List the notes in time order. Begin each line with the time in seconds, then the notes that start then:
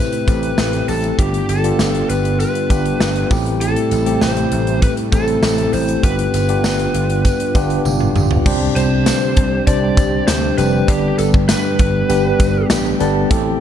Already playing: A2 C3 G3 A3 C4 E4 G4 B4
0.12 closed hi-hat
0.27 A1 A3 C4 E4 G4, kick, closed hi-hat, tambourine
0.43 closed hi-hat
0.58 A1, snare, tambourine
0.73 closed hi-hat
0.88 A1 A4, open hi-hat, tambourine
1.04 closed hi-hat
1.18 G1 G2 D3 B3 D4 F4 G4, kick, closed hi-hat
1.34 closed hi-hat
1.49 G1 A4, closed hi-hat, tambourine
1.64 B3 D4 F4 G4, closed hi-hat
1.79 G1, snare, tambourine
1.95 closed hi-hat
2.09 G1 B4, closed hi-hat, tambourine
2.25 closed hi-hat
2.40 B4, closed hi-hat, tambourine
2.55 closed hi-hat
2.70 G1 B3 D4 F4 G4, kick, closed hi-hat, tambourine
2.85 closed hi-hat
3.00 G1, snare, tambourine
3.16 closed hi-hat
3.30 A1 A2 C3 A3 C4 E4 G4, kick, open hi-hat, tambourine
3.46 closed hi-hat
3.61 A4, closed hi-hat, tambourine
3.76 closed hi-hat
3.91 A1, closed hi-hat, tambourine
4.06 A3 C4 E4 G4, closed hi-hat
4.21 A1 C5, snare, tambourine
4.37 closed hi-hat
4.52 A1, closed hi-hat
4.67 closed hi-hat
4.82 B4, kick, closed hi-hat, tambourine
4.97 closed hi-hat
5.12 A1 A3 C4 E4 A4, kick, closed hi-hat, tambourine
5.28 closed hi-hat
5.43 A1, snare, tambourine
5.58 closed hi-hat
5.73 A1 C5, open hi-hat, tambourine
5.89 closed hi-hat
6.03 G1 G2 D3 B3 D4 F4 G4 B4, kick, closed hi-hat, tambourine
6.19 closed hi-hat
6.34 G1, closed hi-hat, tambourine
6.48 B3 D4 F4 G4, closed hi-hat
6.64 G1, snare, tambourine
6.79 closed hi-hat
6.94 G1, closed hi-hat
7.10 closed hi-hat
7.25 kick, closed hi-hat, tambourine
7.40 closed hi-hat
7.55 G1 B3 D4 F4 G4, kick, closed hi-hat, tambourine
7.70 closed hi-hat
7.85 G1, high tom, tambourine
8.00 mid tom
8.15 G1, mid tom, tambourine
8.31 floor tom
8.45 C2 C3 D3 G3 C4 D4 G4 C5, kick, crash, tambourine
8.76 C2 C5, closed hi-hat, tambourine
9.06 snare, closed hi-hat, tambourine
9.37 C2, kick, closed hi-hat
9.67 C2 G3 C4 D4 G4 C5 D5, kick, closed hi-hat, tambourine
9.97 C2, kick, closed hi-hat, tambourine
10.27 D2 C5, snare, closed hi-hat, tambourine
10.57 F1 G3 C4 D4 G4 B4 C5, closed hi-hat, tambourine
10.88 G1 G2 G3 B3 D4 G4 B4, kick, closed hi-hat, tambourine
11.19 G1 A4, closed hi-hat, tambourine
11.34 kick
11.49 B4, snare, closed hi-hat, tambourine
11.79 G1, kick, closed hi-hat
12.09 G1 G3 B3 D4 G4 B4, closed hi-hat, tambourine
12.40 G1, kick, closed hi-hat, tambourine
12.70 A1 G4, snare, closed hi-hat, tambourine
13.00 G1 G3 B3 D4 G4 A4 B4, closed hi-hat, tambourine
13.30 A1 A2 E3 A3 C4 E4 G4 A4, kick, closed hi-hat